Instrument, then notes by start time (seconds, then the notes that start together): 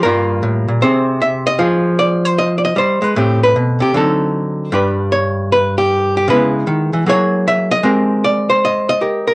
hollow-body jazz guitar
0.03 G2 G3 A#3 F4 A#4
0.43 A2
0.68 A#2
0.82 C3 C4 G#4 C5
1.22 E5
1.47 D#5
1.59 F3 F4 G#4
1.99 D5
2.25 C5
2.38 D#5
2.58 D5
2.65 D#5
2.76 G3 C5
3.02 G#3 B4
3.16 A2 A3 C4 G4
3.44 B4
3.56 B2
3.80 C3 G4
3.94 D3 F#3 C4 D#4 A4
4.72 G2 G3 D4 G4 B4
5.12 C#5
5.52 B4
5.78 G4
6.17 G4
6.28 C#3 G#3 B3 E4 B4
6.67 D#3
6.93 E3
7.06 F#3 A#3 E4 G#4 C#5
7.48 E5
7.71 D#5
7.83 G#3 C4 G4 A#4
8.24 D5
8.50 C5
8.65 D#5
8.89 D#5
9.01 G4 A#4
9.28 A#4